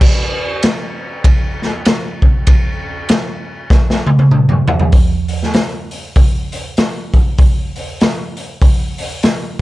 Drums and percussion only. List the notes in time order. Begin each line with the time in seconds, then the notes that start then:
0.01 kick, crash
0.63 snare, ride bell
1.24 kick, ride bell
1.62 snare
1.85 snare, ride bell
2.22 kick
2.47 kick, ride bell
3.09 snare, ride bell
3.70 kick, snare
3.90 snare
4.06 high tom
4.19 high tom
4.31 mid tom
4.49 mid tom
4.68 floor tom
4.80 floor tom
4.92 kick, open hi-hat
5.28 open hi-hat
5.43 snare
5.54 snare, open hi-hat
5.91 open hi-hat
6.16 kick, open hi-hat
6.52 open hi-hat
6.77 snare, open hi-hat
7.14 kick, open hi-hat
7.38 kick, open hi-hat
7.76 open hi-hat
8.00 snare, open hi-hat
8.37 open hi-hat
8.62 kick, open hi-hat
8.98 open hi-hat
9.23 snare, open hi-hat